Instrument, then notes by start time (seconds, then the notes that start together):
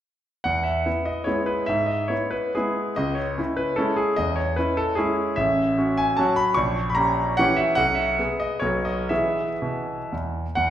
grand piano
0.44 E2 F#5
0.63 E5
0.86 B3 E4
1.05 D#5
1.24 G#3 B3 E4 C#5
1.46 B4
1.66 G#2 E5
1.86 D#5
2.08 B3 E4 C#5
2.31 B4
2.55 G#3 B3 E4 G#4
2.96 C#2 D#5
3.15 C#5
3.38 C#4 E4
3.57 B4
3.76 G#3 C#4 E4 A4
3.96 G#4
4.16 E2 D#5
4.36 C#5
4.56 C#4 E4 B4
4.77 A4
4.95 G#3 C#4 E4 G#4
5.36 A1 E5
5.78 C#4 F#4
5.97 G#5
6.17 F#3 C#4 F#4 A5
6.36 B5
6.54 A#1 C#6
6.90 B5
6.95 C#4 G4 A#5
7.37 E3 C#4 G4 F#5
7.56 E5
7.75 B1 F#5
7.95 E5
8.19 B3 G#4
8.40 D#5
8.60 B1 F#3 B3 F#4 C#5
8.85 D#5
9.09 E3 B3 G#4 E5
9.62 B2
10.12 E2
10.55 E2 F#5